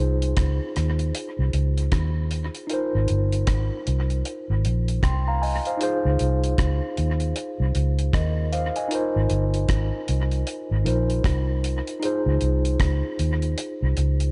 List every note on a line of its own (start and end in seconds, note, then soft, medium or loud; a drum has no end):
0.00 0.33 C2 medium
0.00 2.64 D#4 medium
0.00 2.65 F4 medium
0.00 2.66 G#4 medium
0.00 2.70 C5 medium
0.22 closed hi-hat medium
0.37 0.58 C#2 medium
0.37 kick loud
0.37 cross-stick loud
0.37 closed hi-hat loud
0.76 1.11 D#2 medium
0.76 cross-stick medium
0.76 closed hi-hat medium
0.99 closed hi-hat medium
1.15 closed hi-hat loud
1.39 1.52 C2 medium
1.53 1.88 C#2 medium
1.53 closed hi-hat medium
1.77 closed hi-hat medium
1.92 2.48 D#2 loud
1.92 kick loud
1.92 cross-stick loud
1.92 closed hi-hat medium
2.31 closed hi-hat medium
2.55 closed hi-hat medium
2.67 5.75 D#4 medium
2.67 5.76 F4 medium
2.67 5.77 A#4 medium
2.67 closed hi-hat medium
2.73 4.62 C5 medium
2.95 3.08 G#1 medium
3.08 3.44 G1 medium
3.08 closed hi-hat medium
3.32 closed hi-hat medium
3.47 3.69 G#1 loud
3.47 kick loud
3.47 cross-stick loud
3.47 closed hi-hat loud
3.87 4.21 C2 medium
3.87 closed hi-hat medium
4.10 closed hi-hat medium
4.25 closed hi-hat loud
4.50 4.63 G#1 medium
4.65 4.99 A#1 medium
4.65 closed hi-hat medium
4.88 closed hi-hat medium
5.03 5.59 C2 medium
5.03 5.26 G5 medium
5.03 5.25 C6 medium
5.03 kick loud
5.03 cross-stick loud
5.03 closed hi-hat medium
5.28 5.42 F5 medium
5.28 5.42 A#5 medium
5.42 5.65 D#5 medium
5.42 5.64 G#5 medium
5.42 open hi-hat medium
5.65 5.82 C5 medium
5.65 6.03 F5 medium
5.65 closed hi-hat medium
5.77 8.85 D#4 medium
5.77 8.86 F4 medium
5.77 8.87 G#4 medium
5.77 closed hi-hat medium
5.83 8.11 C5 medium
6.05 6.18 C#2 medium
6.19 6.54 C2 medium
6.19 closed hi-hat medium
6.44 closed hi-hat medium
6.58 6.79 C#2 medium
6.58 kick loud
6.58 cross-stick loud
6.58 closed hi-hat loud
6.97 7.32 D#2 medium
6.97 closed hi-hat medium
7.20 closed hi-hat medium
7.36 closed hi-hat loud
7.60 7.73 C2 medium
7.75 8.09 C#2 medium
7.75 closed hi-hat medium
7.99 closed hi-hat medium
8.13 8.69 D#2 loud
8.13 8.51 A#4 medium
8.13 8.50 D#5 medium
8.13 kick loud
8.13 cross-stick loud
8.13 closed hi-hat medium
8.53 8.75 C5 medium
8.53 8.75 F5 medium
8.53 closed hi-hat medium
8.76 9.13 D#5 medium
8.76 9.13 G#5 medium
8.76 closed hi-hat medium
8.88 10.80 D#4 medium
8.88 10.81 F4 medium
8.88 closed hi-hat medium
8.93 10.82 A#4 medium
8.93 10.83 C5 medium
9.16 9.29 G#1 medium
9.30 9.65 G1 medium
9.30 closed hi-hat medium
9.54 closed hi-hat medium
9.69 9.90 G#1 medium
9.69 kick loud
9.69 cross-stick loud
9.69 closed hi-hat loud
10.08 10.43 C2 medium
10.08 closed hi-hat medium
10.31 closed hi-hat medium
10.47 closed hi-hat medium
10.71 10.84 G#1 medium
10.84 11.20 A#1 medium
10.84 11.98 D#4 medium
10.84 12.00 F4 medium
10.84 12.02 A#4 medium
10.84 12.03 C5 medium
10.84 closed hi-hat medium
11.10 closed hi-hat medium
11.24 11.80 C2 loud
11.24 kick loud
11.24 cross-stick loud
11.24 closed hi-hat medium
11.64 closed hi-hat medium
11.87 closed hi-hat medium
12.00 14.32 D#4 medium
12.00 14.32 F4 medium
12.00 14.32 G#4 medium
12.00 closed hi-hat medium
12.05 14.32 C5 medium
12.26 12.39 C#2 medium
12.41 12.76 C2 medium
12.41 closed hi-hat medium
12.65 closed hi-hat medium
12.80 13.01 C#2 loud
12.80 kick loud
12.80 cross-stick loud
12.80 closed hi-hat loud
13.19 13.54 D#2 medium
13.19 closed hi-hat medium
13.42 closed hi-hat medium
13.58 closed hi-hat loud
13.82 13.95 C2 medium
13.97 14.32 C#2 medium
13.97 closed hi-hat medium
14.20 closed hi-hat medium